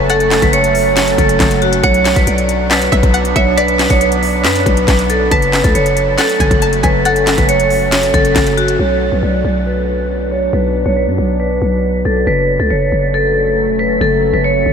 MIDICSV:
0, 0, Header, 1, 6, 480
1, 0, Start_track
1, 0, Tempo, 434783
1, 107, Time_signature, 4, 2, 24, 8
1, 16261, End_track
2, 0, Start_track
2, 0, Title_t, "Synth pluck"
2, 0, Program_c, 0, 84
2, 110, Note_on_c, 0, 78, 100
2, 560, Note_off_c, 0, 78, 0
2, 2027, Note_on_c, 0, 78, 96
2, 2478, Note_off_c, 0, 78, 0
2, 2988, Note_on_c, 0, 74, 96
2, 3215, Note_off_c, 0, 74, 0
2, 3223, Note_on_c, 0, 76, 76
2, 3453, Note_off_c, 0, 76, 0
2, 3464, Note_on_c, 0, 78, 82
2, 3694, Note_off_c, 0, 78, 0
2, 3708, Note_on_c, 0, 76, 89
2, 3936, Note_off_c, 0, 76, 0
2, 3947, Note_on_c, 0, 74, 114
2, 4398, Note_off_c, 0, 74, 0
2, 5868, Note_on_c, 0, 81, 105
2, 6319, Note_off_c, 0, 81, 0
2, 6820, Note_on_c, 0, 78, 87
2, 7051, Note_off_c, 0, 78, 0
2, 7070, Note_on_c, 0, 80, 81
2, 7296, Note_off_c, 0, 80, 0
2, 7309, Note_on_c, 0, 81, 89
2, 7536, Note_off_c, 0, 81, 0
2, 7542, Note_on_c, 0, 80, 78
2, 7772, Note_off_c, 0, 80, 0
2, 7792, Note_on_c, 0, 78, 100
2, 8241, Note_off_c, 0, 78, 0
2, 16261, End_track
3, 0, Start_track
3, 0, Title_t, "Vibraphone"
3, 0, Program_c, 1, 11
3, 108, Note_on_c, 1, 69, 108
3, 446, Note_off_c, 1, 69, 0
3, 470, Note_on_c, 1, 71, 82
3, 569, Note_off_c, 1, 71, 0
3, 587, Note_on_c, 1, 73, 96
3, 1264, Note_off_c, 1, 73, 0
3, 1307, Note_on_c, 1, 69, 88
3, 1758, Note_off_c, 1, 69, 0
3, 1788, Note_on_c, 1, 66, 80
3, 1988, Note_off_c, 1, 66, 0
3, 2027, Note_on_c, 1, 73, 120
3, 2366, Note_off_c, 1, 73, 0
3, 2387, Note_on_c, 1, 71, 77
3, 2487, Note_off_c, 1, 71, 0
3, 2508, Note_on_c, 1, 74, 85
3, 2959, Note_off_c, 1, 74, 0
3, 2987, Note_on_c, 1, 71, 87
3, 3664, Note_off_c, 1, 71, 0
3, 3706, Note_on_c, 1, 73, 88
3, 3907, Note_off_c, 1, 73, 0
3, 3947, Note_on_c, 1, 71, 104
3, 4286, Note_off_c, 1, 71, 0
3, 4308, Note_on_c, 1, 73, 87
3, 4408, Note_off_c, 1, 73, 0
3, 4427, Note_on_c, 1, 71, 78
3, 4878, Note_off_c, 1, 71, 0
3, 4907, Note_on_c, 1, 71, 83
3, 5584, Note_off_c, 1, 71, 0
3, 5627, Note_on_c, 1, 69, 88
3, 5828, Note_off_c, 1, 69, 0
3, 5868, Note_on_c, 1, 71, 116
3, 6206, Note_off_c, 1, 71, 0
3, 6228, Note_on_c, 1, 69, 77
3, 6328, Note_off_c, 1, 69, 0
3, 6348, Note_on_c, 1, 73, 78
3, 6799, Note_off_c, 1, 73, 0
3, 6827, Note_on_c, 1, 69, 89
3, 7504, Note_off_c, 1, 69, 0
3, 7547, Note_on_c, 1, 71, 82
3, 7748, Note_off_c, 1, 71, 0
3, 7788, Note_on_c, 1, 69, 113
3, 8126, Note_off_c, 1, 69, 0
3, 8145, Note_on_c, 1, 71, 83
3, 8246, Note_off_c, 1, 71, 0
3, 8267, Note_on_c, 1, 73, 97
3, 8944, Note_off_c, 1, 73, 0
3, 8985, Note_on_c, 1, 69, 85
3, 9437, Note_off_c, 1, 69, 0
3, 9466, Note_on_c, 1, 66, 82
3, 9667, Note_off_c, 1, 66, 0
3, 9707, Note_on_c, 1, 73, 110
3, 10045, Note_off_c, 1, 73, 0
3, 10067, Note_on_c, 1, 71, 72
3, 10167, Note_off_c, 1, 71, 0
3, 10187, Note_on_c, 1, 74, 79
3, 10638, Note_off_c, 1, 74, 0
3, 10668, Note_on_c, 1, 71, 84
3, 11345, Note_off_c, 1, 71, 0
3, 11387, Note_on_c, 1, 73, 80
3, 11588, Note_off_c, 1, 73, 0
3, 11628, Note_on_c, 1, 71, 99
3, 11966, Note_off_c, 1, 71, 0
3, 11988, Note_on_c, 1, 73, 84
3, 12088, Note_off_c, 1, 73, 0
3, 12107, Note_on_c, 1, 71, 75
3, 12558, Note_off_c, 1, 71, 0
3, 12585, Note_on_c, 1, 71, 79
3, 13263, Note_off_c, 1, 71, 0
3, 13308, Note_on_c, 1, 69, 81
3, 13508, Note_off_c, 1, 69, 0
3, 13547, Note_on_c, 1, 71, 112
3, 13886, Note_off_c, 1, 71, 0
3, 13907, Note_on_c, 1, 69, 73
3, 14007, Note_off_c, 1, 69, 0
3, 14026, Note_on_c, 1, 73, 76
3, 14478, Note_off_c, 1, 73, 0
3, 14507, Note_on_c, 1, 69, 89
3, 15184, Note_off_c, 1, 69, 0
3, 15228, Note_on_c, 1, 71, 79
3, 15428, Note_off_c, 1, 71, 0
3, 15470, Note_on_c, 1, 69, 108
3, 15807, Note_off_c, 1, 69, 0
3, 15828, Note_on_c, 1, 71, 78
3, 15928, Note_off_c, 1, 71, 0
3, 15946, Note_on_c, 1, 73, 94
3, 16261, Note_off_c, 1, 73, 0
3, 16261, End_track
4, 0, Start_track
4, 0, Title_t, "Ambient pad"
4, 0, Program_c, 2, 92
4, 0, Note_on_c, 2, 54, 83
4, 0, Note_on_c, 2, 57, 77
4, 0, Note_on_c, 2, 61, 90
4, 1989, Note_off_c, 2, 57, 0
4, 1989, Note_off_c, 2, 61, 0
4, 2028, Note_on_c, 2, 59, 75
4, 2028, Note_on_c, 2, 62, 93
4, 5824, Note_off_c, 2, 54, 0
4, 5829, Note_off_c, 2, 59, 0
4, 5829, Note_off_c, 2, 62, 0
4, 5868, Note_on_c, 2, 54, 81
4, 5868, Note_on_c, 2, 61, 90
4, 5869, Note_on_c, 2, 57, 72
4, 9669, Note_off_c, 2, 54, 0
4, 9669, Note_off_c, 2, 57, 0
4, 9669, Note_off_c, 2, 61, 0
4, 9708, Note_on_c, 2, 59, 73
4, 9708, Note_on_c, 2, 62, 84
4, 9709, Note_on_c, 2, 54, 81
4, 13509, Note_off_c, 2, 59, 0
4, 13509, Note_off_c, 2, 62, 0
4, 13510, Note_off_c, 2, 54, 0
4, 13547, Note_on_c, 2, 54, 78
4, 13547, Note_on_c, 2, 57, 72
4, 13547, Note_on_c, 2, 61, 90
4, 16261, Note_off_c, 2, 54, 0
4, 16261, Note_off_c, 2, 57, 0
4, 16261, Note_off_c, 2, 61, 0
4, 16261, End_track
5, 0, Start_track
5, 0, Title_t, "808-style bass"
5, 0, Program_c, 3, 38
5, 0, Note_on_c, 3, 30, 109
5, 443, Note_off_c, 3, 30, 0
5, 467, Note_on_c, 3, 30, 106
5, 1273, Note_off_c, 3, 30, 0
5, 1305, Note_on_c, 3, 30, 107
5, 1537, Note_off_c, 3, 30, 0
5, 1545, Note_on_c, 3, 30, 109
5, 2007, Note_off_c, 3, 30, 0
5, 2026, Note_on_c, 3, 35, 118
5, 2372, Note_off_c, 3, 35, 0
5, 2387, Note_on_c, 3, 35, 103
5, 2502, Note_off_c, 3, 35, 0
5, 2507, Note_on_c, 3, 35, 107
5, 3198, Note_off_c, 3, 35, 0
5, 3226, Note_on_c, 3, 35, 110
5, 3342, Note_off_c, 3, 35, 0
5, 3346, Note_on_c, 3, 35, 107
5, 3692, Note_off_c, 3, 35, 0
5, 3708, Note_on_c, 3, 35, 104
5, 4284, Note_off_c, 3, 35, 0
5, 4308, Note_on_c, 3, 35, 108
5, 4907, Note_on_c, 3, 42, 104
5, 4923, Note_off_c, 3, 35, 0
5, 5135, Note_off_c, 3, 42, 0
5, 5146, Note_on_c, 3, 35, 105
5, 5377, Note_off_c, 3, 35, 0
5, 5386, Note_on_c, 3, 35, 110
5, 5847, Note_off_c, 3, 35, 0
5, 5867, Note_on_c, 3, 30, 112
5, 6213, Note_off_c, 3, 30, 0
5, 6228, Note_on_c, 3, 37, 108
5, 6340, Note_off_c, 3, 37, 0
5, 6347, Note_on_c, 3, 30, 110
5, 6808, Note_off_c, 3, 30, 0
5, 7066, Note_on_c, 3, 30, 105
5, 7180, Note_off_c, 3, 30, 0
5, 7186, Note_on_c, 3, 30, 107
5, 7532, Note_off_c, 3, 30, 0
5, 7547, Note_on_c, 3, 30, 105
5, 8123, Note_off_c, 3, 30, 0
5, 8147, Note_on_c, 3, 30, 104
5, 8953, Note_off_c, 3, 30, 0
5, 8985, Note_on_c, 3, 30, 107
5, 9217, Note_off_c, 3, 30, 0
5, 9226, Note_on_c, 3, 30, 104
5, 9687, Note_off_c, 3, 30, 0
5, 9708, Note_on_c, 3, 35, 110
5, 10053, Note_off_c, 3, 35, 0
5, 10069, Note_on_c, 3, 35, 100
5, 10183, Note_off_c, 3, 35, 0
5, 10189, Note_on_c, 3, 35, 107
5, 10418, Note_off_c, 3, 35, 0
5, 10428, Note_on_c, 3, 35, 104
5, 11583, Note_off_c, 3, 35, 0
5, 11627, Note_on_c, 3, 35, 114
5, 11973, Note_off_c, 3, 35, 0
5, 11986, Note_on_c, 3, 35, 105
5, 12226, Note_on_c, 3, 42, 101
5, 12242, Note_off_c, 3, 35, 0
5, 12340, Note_off_c, 3, 42, 0
5, 12346, Note_on_c, 3, 35, 98
5, 12807, Note_off_c, 3, 35, 0
5, 12825, Note_on_c, 3, 35, 102
5, 13287, Note_off_c, 3, 35, 0
5, 13306, Note_on_c, 3, 35, 101
5, 13537, Note_off_c, 3, 35, 0
5, 13546, Note_on_c, 3, 30, 112
5, 13892, Note_off_c, 3, 30, 0
5, 13906, Note_on_c, 3, 37, 102
5, 14022, Note_off_c, 3, 37, 0
5, 14026, Note_on_c, 3, 30, 103
5, 14257, Note_off_c, 3, 30, 0
5, 14266, Note_on_c, 3, 30, 103
5, 15106, Note_on_c, 3, 28, 96
5, 15123, Note_off_c, 3, 30, 0
5, 15285, Note_on_c, 3, 30, 96
5, 15302, Note_off_c, 3, 28, 0
5, 15457, Note_off_c, 3, 30, 0
5, 15466, Note_on_c, 3, 30, 111
5, 15812, Note_off_c, 3, 30, 0
5, 15825, Note_on_c, 3, 30, 101
5, 16172, Note_off_c, 3, 30, 0
5, 16186, Note_on_c, 3, 30, 104
5, 16261, Note_off_c, 3, 30, 0
5, 16261, End_track
6, 0, Start_track
6, 0, Title_t, "Drums"
6, 106, Note_on_c, 9, 42, 88
6, 216, Note_off_c, 9, 42, 0
6, 224, Note_on_c, 9, 42, 59
6, 335, Note_off_c, 9, 42, 0
6, 345, Note_on_c, 9, 42, 78
6, 346, Note_on_c, 9, 38, 105
6, 351, Note_on_c, 9, 39, 85
6, 456, Note_off_c, 9, 42, 0
6, 457, Note_off_c, 9, 38, 0
6, 462, Note_off_c, 9, 39, 0
6, 466, Note_on_c, 9, 42, 68
6, 467, Note_on_c, 9, 36, 101
6, 577, Note_off_c, 9, 36, 0
6, 577, Note_off_c, 9, 42, 0
6, 586, Note_on_c, 9, 42, 89
6, 696, Note_off_c, 9, 42, 0
6, 706, Note_on_c, 9, 42, 69
6, 816, Note_off_c, 9, 42, 0
6, 826, Note_on_c, 9, 46, 81
6, 937, Note_off_c, 9, 46, 0
6, 1065, Note_on_c, 9, 42, 85
6, 1067, Note_on_c, 9, 38, 118
6, 1072, Note_on_c, 9, 39, 95
6, 1176, Note_off_c, 9, 42, 0
6, 1177, Note_off_c, 9, 38, 0
6, 1182, Note_off_c, 9, 39, 0
6, 1187, Note_on_c, 9, 42, 62
6, 1298, Note_off_c, 9, 42, 0
6, 1305, Note_on_c, 9, 36, 85
6, 1308, Note_on_c, 9, 42, 71
6, 1416, Note_off_c, 9, 36, 0
6, 1419, Note_off_c, 9, 42, 0
6, 1426, Note_on_c, 9, 42, 63
6, 1537, Note_off_c, 9, 42, 0
6, 1545, Note_on_c, 9, 36, 104
6, 1546, Note_on_c, 9, 38, 102
6, 1546, Note_on_c, 9, 42, 85
6, 1551, Note_on_c, 9, 39, 81
6, 1656, Note_off_c, 9, 36, 0
6, 1656, Note_off_c, 9, 42, 0
6, 1657, Note_off_c, 9, 38, 0
6, 1661, Note_off_c, 9, 39, 0
6, 1666, Note_on_c, 9, 42, 61
6, 1776, Note_off_c, 9, 42, 0
6, 1786, Note_on_c, 9, 42, 49
6, 1896, Note_off_c, 9, 42, 0
6, 1906, Note_on_c, 9, 42, 84
6, 2016, Note_off_c, 9, 42, 0
6, 2025, Note_on_c, 9, 42, 84
6, 2026, Note_on_c, 9, 36, 112
6, 2136, Note_off_c, 9, 36, 0
6, 2136, Note_off_c, 9, 42, 0
6, 2145, Note_on_c, 9, 42, 59
6, 2255, Note_off_c, 9, 42, 0
6, 2267, Note_on_c, 9, 42, 80
6, 2268, Note_on_c, 9, 38, 105
6, 2273, Note_on_c, 9, 39, 84
6, 2377, Note_off_c, 9, 42, 0
6, 2378, Note_off_c, 9, 38, 0
6, 2383, Note_off_c, 9, 39, 0
6, 2388, Note_on_c, 9, 36, 101
6, 2388, Note_on_c, 9, 42, 69
6, 2498, Note_off_c, 9, 36, 0
6, 2498, Note_off_c, 9, 42, 0
6, 2507, Note_on_c, 9, 42, 90
6, 2618, Note_off_c, 9, 42, 0
6, 2628, Note_on_c, 9, 42, 66
6, 2738, Note_off_c, 9, 42, 0
6, 2747, Note_on_c, 9, 42, 78
6, 2858, Note_off_c, 9, 42, 0
6, 2987, Note_on_c, 9, 42, 83
6, 2989, Note_on_c, 9, 38, 117
6, 2994, Note_on_c, 9, 39, 95
6, 3098, Note_off_c, 9, 42, 0
6, 3099, Note_off_c, 9, 38, 0
6, 3104, Note_off_c, 9, 39, 0
6, 3108, Note_on_c, 9, 42, 61
6, 3219, Note_off_c, 9, 42, 0
6, 3226, Note_on_c, 9, 36, 85
6, 3230, Note_on_c, 9, 42, 68
6, 3337, Note_off_c, 9, 36, 0
6, 3340, Note_off_c, 9, 42, 0
6, 3346, Note_on_c, 9, 36, 102
6, 3348, Note_on_c, 9, 42, 64
6, 3457, Note_off_c, 9, 36, 0
6, 3458, Note_off_c, 9, 42, 0
6, 3467, Note_on_c, 9, 42, 84
6, 3578, Note_off_c, 9, 42, 0
6, 3587, Note_on_c, 9, 42, 60
6, 3698, Note_off_c, 9, 42, 0
6, 3707, Note_on_c, 9, 36, 98
6, 3707, Note_on_c, 9, 42, 80
6, 3818, Note_off_c, 9, 36, 0
6, 3818, Note_off_c, 9, 42, 0
6, 3948, Note_on_c, 9, 42, 89
6, 4058, Note_off_c, 9, 42, 0
6, 4066, Note_on_c, 9, 42, 61
6, 4177, Note_off_c, 9, 42, 0
6, 4187, Note_on_c, 9, 42, 78
6, 4188, Note_on_c, 9, 38, 109
6, 4193, Note_on_c, 9, 39, 80
6, 4297, Note_off_c, 9, 42, 0
6, 4298, Note_off_c, 9, 38, 0
6, 4303, Note_off_c, 9, 39, 0
6, 4307, Note_on_c, 9, 42, 69
6, 4308, Note_on_c, 9, 36, 101
6, 4417, Note_off_c, 9, 42, 0
6, 4418, Note_off_c, 9, 36, 0
6, 4427, Note_on_c, 9, 42, 91
6, 4537, Note_off_c, 9, 42, 0
6, 4547, Note_on_c, 9, 42, 68
6, 4657, Note_off_c, 9, 42, 0
6, 4666, Note_on_c, 9, 46, 77
6, 4777, Note_off_c, 9, 46, 0
6, 4906, Note_on_c, 9, 42, 81
6, 4908, Note_on_c, 9, 38, 120
6, 4913, Note_on_c, 9, 39, 96
6, 5017, Note_off_c, 9, 42, 0
6, 5018, Note_off_c, 9, 38, 0
6, 5023, Note_off_c, 9, 39, 0
6, 5028, Note_on_c, 9, 42, 61
6, 5139, Note_off_c, 9, 42, 0
6, 5146, Note_on_c, 9, 36, 84
6, 5149, Note_on_c, 9, 42, 70
6, 5256, Note_off_c, 9, 36, 0
6, 5259, Note_off_c, 9, 42, 0
6, 5266, Note_on_c, 9, 42, 64
6, 5377, Note_off_c, 9, 42, 0
6, 5386, Note_on_c, 9, 36, 104
6, 5387, Note_on_c, 9, 38, 100
6, 5387, Note_on_c, 9, 42, 85
6, 5392, Note_on_c, 9, 39, 81
6, 5497, Note_off_c, 9, 36, 0
6, 5497, Note_off_c, 9, 42, 0
6, 5498, Note_off_c, 9, 38, 0
6, 5502, Note_off_c, 9, 39, 0
6, 5507, Note_on_c, 9, 42, 60
6, 5617, Note_off_c, 9, 42, 0
6, 5626, Note_on_c, 9, 42, 79
6, 5737, Note_off_c, 9, 42, 0
6, 5867, Note_on_c, 9, 36, 113
6, 5867, Note_on_c, 9, 42, 86
6, 5977, Note_off_c, 9, 36, 0
6, 5977, Note_off_c, 9, 42, 0
6, 5987, Note_on_c, 9, 42, 58
6, 6097, Note_off_c, 9, 42, 0
6, 6108, Note_on_c, 9, 42, 82
6, 6109, Note_on_c, 9, 38, 104
6, 6114, Note_on_c, 9, 39, 83
6, 6218, Note_off_c, 9, 42, 0
6, 6219, Note_off_c, 9, 38, 0
6, 6224, Note_off_c, 9, 39, 0
6, 6228, Note_on_c, 9, 36, 101
6, 6229, Note_on_c, 9, 42, 70
6, 6339, Note_off_c, 9, 36, 0
6, 6340, Note_off_c, 9, 42, 0
6, 6349, Note_on_c, 9, 42, 91
6, 6459, Note_off_c, 9, 42, 0
6, 6468, Note_on_c, 9, 42, 67
6, 6579, Note_off_c, 9, 42, 0
6, 6587, Note_on_c, 9, 42, 80
6, 6698, Note_off_c, 9, 42, 0
6, 6827, Note_on_c, 9, 42, 85
6, 6828, Note_on_c, 9, 38, 124
6, 6833, Note_on_c, 9, 39, 96
6, 6937, Note_off_c, 9, 42, 0
6, 6939, Note_off_c, 9, 38, 0
6, 6944, Note_off_c, 9, 39, 0
6, 6948, Note_on_c, 9, 42, 61
6, 7059, Note_off_c, 9, 42, 0
6, 7066, Note_on_c, 9, 36, 86
6, 7069, Note_on_c, 9, 42, 72
6, 7176, Note_off_c, 9, 36, 0
6, 7179, Note_off_c, 9, 42, 0
6, 7186, Note_on_c, 9, 36, 102
6, 7187, Note_on_c, 9, 42, 65
6, 7297, Note_off_c, 9, 36, 0
6, 7298, Note_off_c, 9, 42, 0
6, 7307, Note_on_c, 9, 42, 83
6, 7418, Note_off_c, 9, 42, 0
6, 7427, Note_on_c, 9, 42, 62
6, 7537, Note_off_c, 9, 42, 0
6, 7547, Note_on_c, 9, 36, 96
6, 7547, Note_on_c, 9, 42, 80
6, 7657, Note_off_c, 9, 36, 0
6, 7658, Note_off_c, 9, 42, 0
6, 7787, Note_on_c, 9, 42, 87
6, 7897, Note_off_c, 9, 42, 0
6, 7905, Note_on_c, 9, 42, 59
6, 8015, Note_off_c, 9, 42, 0
6, 8025, Note_on_c, 9, 42, 82
6, 8026, Note_on_c, 9, 38, 107
6, 8031, Note_on_c, 9, 39, 82
6, 8135, Note_off_c, 9, 42, 0
6, 8137, Note_off_c, 9, 38, 0
6, 8141, Note_off_c, 9, 39, 0
6, 8146, Note_on_c, 9, 42, 67
6, 8147, Note_on_c, 9, 36, 101
6, 8256, Note_off_c, 9, 42, 0
6, 8258, Note_off_c, 9, 36, 0
6, 8266, Note_on_c, 9, 42, 93
6, 8376, Note_off_c, 9, 42, 0
6, 8386, Note_on_c, 9, 42, 67
6, 8496, Note_off_c, 9, 42, 0
6, 8505, Note_on_c, 9, 46, 78
6, 8616, Note_off_c, 9, 46, 0
6, 8745, Note_on_c, 9, 42, 86
6, 8747, Note_on_c, 9, 38, 121
6, 8752, Note_on_c, 9, 39, 96
6, 8856, Note_off_c, 9, 42, 0
6, 8857, Note_off_c, 9, 38, 0
6, 8862, Note_off_c, 9, 39, 0
6, 8866, Note_on_c, 9, 42, 61
6, 8977, Note_off_c, 9, 42, 0
6, 8985, Note_on_c, 9, 36, 85
6, 8987, Note_on_c, 9, 42, 67
6, 9096, Note_off_c, 9, 36, 0
6, 9097, Note_off_c, 9, 42, 0
6, 9106, Note_on_c, 9, 42, 62
6, 9216, Note_off_c, 9, 42, 0
6, 9226, Note_on_c, 9, 36, 103
6, 9226, Note_on_c, 9, 38, 101
6, 9226, Note_on_c, 9, 42, 83
6, 9231, Note_on_c, 9, 39, 80
6, 9336, Note_off_c, 9, 36, 0
6, 9336, Note_off_c, 9, 38, 0
6, 9336, Note_off_c, 9, 42, 0
6, 9341, Note_off_c, 9, 39, 0
6, 9346, Note_on_c, 9, 42, 60
6, 9456, Note_off_c, 9, 42, 0
6, 9467, Note_on_c, 9, 42, 49
6, 9578, Note_off_c, 9, 42, 0
6, 9586, Note_on_c, 9, 42, 84
6, 9696, Note_off_c, 9, 42, 0
6, 16261, End_track
0, 0, End_of_file